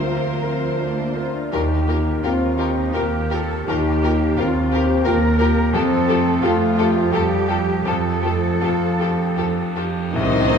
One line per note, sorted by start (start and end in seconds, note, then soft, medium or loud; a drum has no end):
0.00 1.28 D2 soft
0.00 1.48 D2 soft
0.00 0.28 C4 soft
0.00 1.27 F4 soft
0.00 1.32 A#4 soft
0.00 1.28 C5 soft
0.06 0.79 F3 soft
0.06 0.40 A#3 soft
0.06 0.65 F4 soft
0.42 0.79 C4 soft
0.42 1.02 A#4 soft
0.78 0.97 A3 medium
0.78 1.16 D4 soft
0.78 1.39 C5 soft
0.97 1.16 A#3 medium
1.14 1.34 C4 medium
1.14 1.53 F4 soft
1.14 1.53 A#4 soft
1.33 1.52 D4 medium
1.51 2.14 D#2 medium
1.51 3.63 D#2 medium
1.51 2.22 D#4 medium
1.51 1.60 F4 medium
1.51 2.19 G4 medium
1.51 1.62 G4 medium
1.51 1.61 A#4 soft
1.87 2.45 A#3 soft
1.87 1.97 F4 soft
1.87 1.95 G4 soft
1.87 1.97 A#4 soft
2.22 2.85 D#2 medium
2.22 2.94 C4 medium
2.22 2.59 F4 medium
2.22 2.80 F4 soft
2.22 2.32 F4 soft
2.22 2.31 G4 soft
2.22 2.32 A#4 soft
2.58 2.94 D#4 medium
2.58 2.66 F4 soft
2.58 2.67 G4 soft
2.58 3.16 G4 soft
2.58 2.67 A#4 soft
2.93 3.58 D#2 medium
2.93 3.50 A#3 medium
2.93 3.02 F4 soft
2.93 3.30 G4 medium
2.93 3.02 G4 soft
2.93 3.02 A#4 medium
2.93 3.53 A#4 soft
3.31 3.39 F4 soft
3.31 3.39 G4 medium
3.31 3.89 G4 soft
3.31 3.67 A4 medium
3.31 3.39 A#4 soft
3.66 4.29 D#2 medium
3.66 5.70 D#2 medium
3.66 4.36 D#4 medium
3.66 3.76 F4 medium
3.66 4.36 G4 medium
3.66 3.77 G4 medium
3.66 3.76 A#4 medium
4.03 4.58 A#3 soft
4.03 4.12 F4 soft
4.03 4.11 G4 medium
4.03 4.12 A#4 soft
4.36 4.97 D#2 medium
4.36 5.05 C4 medium
4.36 4.72 F4 medium
4.36 4.92 F4 soft
4.36 4.47 F4 medium
4.36 4.45 G4 medium
4.36 4.46 A#4 medium
4.71 4.82 F4 medium
4.71 4.79 G4 medium
4.71 5.05 G4 medium
4.71 5.26 G4 soft
4.71 4.82 A#4 medium
5.05 5.65 D#2 medium
5.05 5.74 A#3 medium
5.05 5.14 F4 medium
5.05 5.14 G4 medium
5.05 5.13 A#4 medium
5.05 5.74 A#4 medium
5.05 5.60 A#4 medium
5.39 5.49 F4 medium
5.39 5.74 G4 medium
5.39 5.48 G4 medium
5.39 5.47 A#4 medium
5.73 6.34 F2 medium
5.73 7.81 F2 medium
5.73 6.41 C4 medium
5.73 5.82 F4 medium
5.73 5.82 G4 medium
5.73 6.41 A4 medium
5.73 5.82 A4 medium
6.08 6.63 A3 medium
6.08 6.17 F4 medium
6.08 6.16 G4 medium
6.08 6.17 A4 medium
6.42 7.04 F2 medium
6.42 6.96 A3 medium
6.42 6.98 F4 medium
6.42 7.12 F4 medium
6.42 6.52 F4 medium
6.42 6.50 G4 medium
6.42 6.52 A4 medium
6.77 6.87 F4 medium
6.77 7.34 G4 medium
6.77 6.86 G4 medium
6.77 6.86 A4 medium
6.96 7.13 F3 medium
7.12 7.76 F2 medium
7.12 7.84 G3 medium
7.12 7.21 F4 medium
7.12 7.85 G4 medium
7.12 7.21 G4 medium
7.12 7.70 A4 medium
7.12 7.22 A4 medium
7.48 7.57 F4 medium
7.48 8.08 G4 soft
7.48 7.57 G4 medium
7.48 7.57 A4 medium
7.85 10.09 F2 medium
7.85 8.53 F2 medium
7.85 9.76 F3 medium
7.85 7.95 F4 medium
7.85 7.93 G4 medium
7.85 9.76 A4 medium
7.85 7.95 A4 medium
8.23 8.84 A3 soft
8.23 8.33 F4 soft
8.23 8.31 G4 soft
8.23 8.33 A4 soft
8.61 9.28 F2 medium
8.61 9.22 F4 soft
8.61 8.71 F4 soft
8.61 8.69 G4 soft
8.61 8.72 A4 soft
9.00 9.08 F4 soft
9.00 9.61 G4 soft
9.00 9.09 G4 soft
9.00 9.09 A4 soft
9.37 10.05 F2 medium
9.37 9.46 F4 soft
9.37 9.46 G4 soft
9.37 9.46 A4 soft
9.37 9.99 A4 soft
9.76 9.85 F4 soft
9.76 9.84 G4 soft
9.76 10.14 G4 soft
9.76 9.85 A4 soft
10.13 10.58 C2 medium
10.13 10.58 C3 medium
10.13 10.58 D#3 loud
10.13 10.47 C4 loud
10.13 10.58 D#4 medium
10.13 10.58 C5 medium
10.13 10.58 D#5 medium
10.13 tam-tam medium
10.49 10.58 A#3 loud
10.49 10.58 C4 medium